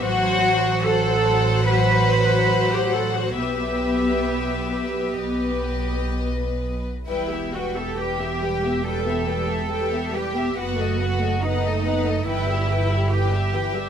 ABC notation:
X:1
M:4/4
L:1/16
Q:1/4=70
K:Em
V:1 name="Violin section"
f4 f12 | e8 ^d6- d z | g e g e g e g e g e g e g e g e | f ^d f d f d f d g e g e g e g e |]
V:2 name="Violin section"
c4 c12 | B8 B6- B z | B G B G B G B G B G B G B G B G | B A B A B A B A B G B G B G B G |]
V:3 name="Cello section"
F4 A4 B4- B G A F | G12 z4 | E2 F A G4 A6 G2 | F4 ^D4 E4 G4 |]
V:4 name="Viola section" clef=bass
F,4 F,12 | B,8 B,6- B, z | G, B, G, B, G, B, G, B, G, B, G, B, G, B, G, B, | B, A, B, A, B, A, B, A, E, G, E, G, E, G, E, G, |]
V:5 name="Double bass section" clef=bass
A,,,16 | B,,,8 B,,,8 | E,,,16 | F,,,8 G,,,8 |]